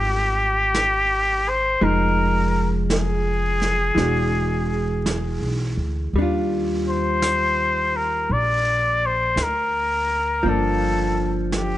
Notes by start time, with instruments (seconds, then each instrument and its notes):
Already playing: upright bass G#1, hollow-body jazz guitar G3 C4 F4, muted trumpet G4
0.74 brush sweep, snare, hi-hat pedal
1.49 muted trumpet C5
1.81 upright bass F1, hollow-body jazz guitar F3 G#3 D#4, muted trumpet A#4, brush sweep
2.90 muted trumpet G#4, brush sweep, snare, hi-hat pedal
3.62 snare
3.95 upright bass E1, hollow-body jazz guitar E3 G#3 D4, brush sweep, snare
4.00 hollow-body jazz guitar F#4
5.06 brush sweep, snare, hi-hat pedal
5.41 upright bass B1
5.77 upright bass D2
6.13 upright bass D#2, hollow-body jazz guitar G3, brush sweep
6.19 hollow-body jazz guitar D4 F4
6.89 muted trumpet C5
7.22 brush sweep, snare, hi-hat pedal
7.96 muted trumpet A#4
8.30 upright bass A#1, muted trumpet D5, brush sweep
9.06 muted trumpet C5
9.36 upright bass D2, brush sweep, snare, hi-hat pedal
9.43 muted trumpet A#4
10.43 upright bass G1, hollow-body jazz guitar F3 A#3, brush sweep
10.48 hollow-body jazz guitar D4, muted trumpet A4
11.52 brush sweep, snare, hi-hat pedal
11.57 muted trumpet G4